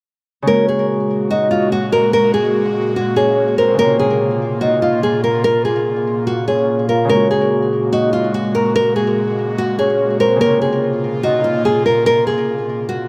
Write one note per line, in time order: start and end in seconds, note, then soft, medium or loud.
0.42 3.73 C#3 medium
0.42 3.84 G#3 medium
0.47 10.37 A#2 medium
0.47 3.76 G#3 medium
0.47 10.37 A#3 medium
0.47 3.76 A#3 medium
0.47 3.76 F#4 medium
0.47 0.65 A#4 loud
0.47 0.87 C#5 loud
0.53 3.77 F#4 medium
0.69 1.27 G#4 medium
1.31 1.48 F#4 medium
1.31 1.69 D#5 medium
1.51 1.69 F4 medium
1.72 1.90 F#4 medium
1.92 2.10 A#4 medium
2.13 2.31 A#4 medium
2.34 2.92 G#4 medium
2.96 3.14 F#4 medium
3.16 3.55 G#4 medium
3.16 3.56 C#5 medium
3.58 3.76 A#4 medium
3.58 3.78 C5 medium
3.74 7.03 C#3 medium
3.74 7.05 A#3 medium
3.79 7.15 C3 medium
3.79 7.07 F4 medium
3.79 3.96 A#4 loud
3.79 4.18 C#5 loud
3.84 7.08 F4 medium
3.99 4.58 G#4 medium
4.61 4.79 F#4 medium
4.61 5.00 D#5 medium
4.82 5.00 F4 medium
5.03 5.21 G#4 medium
5.24 5.41 A#4 medium
5.44 5.62 A#4 loud
5.65 6.23 G#4 medium
6.27 6.45 F#4 medium
6.48 6.87 G#4 medium
6.48 6.87 C#5 medium
6.89 7.07 A#4 medium
6.89 7.09 F5 medium
7.05 10.35 C#3 medium
7.05 10.46 G#3 medium
7.09 10.38 G#3 medium
7.09 10.38 A#3 medium
7.09 10.37 F#4 medium
7.09 7.27 A#4 medium
7.09 7.49 C#5 loud
7.15 10.39 F#4 medium
7.31 7.89 G#4 medium
7.93 8.10 F#4 medium
7.93 8.31 D#5 medium
8.13 8.31 F4 medium
8.34 8.52 F#4 medium
8.55 8.72 A#4 medium
8.76 8.93 A#4 loud
8.96 9.54 G#4 medium
9.58 9.76 F#4 medium
9.79 10.18 G#4 medium
9.79 10.18 C#5 loud
10.20 10.38 A#4 medium
10.20 10.40 C5 medium
10.36 13.08 C#3 medium
10.36 13.08 A#3 medium
10.41 13.08 A#2 medium
10.41 13.08 C3 medium
10.41 13.08 A#3 medium
10.41 13.08 F4 medium
10.41 10.59 A#4 loud
10.41 10.80 C#5 loud
10.46 13.08 F4 medium
10.62 11.20 G#4 medium
11.23 11.41 F#4 medium
11.23 11.62 D#5 medium
11.44 11.62 F4 medium
11.65 11.83 G#4 medium
11.86 12.03 A#4 medium
12.06 12.24 A#4 loud
12.27 12.85 G#4 medium
12.89 13.07 F#4 medium